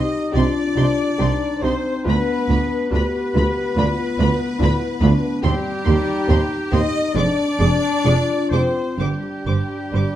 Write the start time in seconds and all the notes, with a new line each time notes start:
Already playing: D#4 G4 D#5
0.32 C2 C3 D4 D#4 F4 G4 D5 C6
0.76 C2 C3 D#4 G4 C6
1.18 C2 C3 D#4 G4 C6
1.62 C2 C3 C4 D#4 G4 C5 C6
2.04 D2 B3 D4 F4 B4
2.09 B5
2.48 D2 D4 F4 B5
2.90 D2 D4 F4 G4 B4
2.94 B3 B5
3.34 D2 D4 F4 B5
3.75 D2 D4 F4 B5
4.18 D2 D4 F4 B5
4.59 D2 D4 E4 F4 B5
5.01 D2 D4 F4 B5
5.42 D#2 G3 C4 G4 C6
5.84 D#2 C4 D#4 G4 C6
6.28 D#2 C4 G4 C6
6.72 D#2 C4 D#4 G4 D#5 C6
7.12 F2 G#3 D4 G#4 D5
7.16 F1 D4 D6
7.59 F1 F2 G#3 G#4 D6
8.04 F1 F2 G#3 F4 G#4 D6
8.49 F1 F2 G#3 G#4 C5 D6
8.54 C4
8.97 G1 G2 G3 D4 G4 C5 D6
9.03 G3
9.46 G1 G2 G3 C5 D6
9.92 G1 G2 G3 C5 D6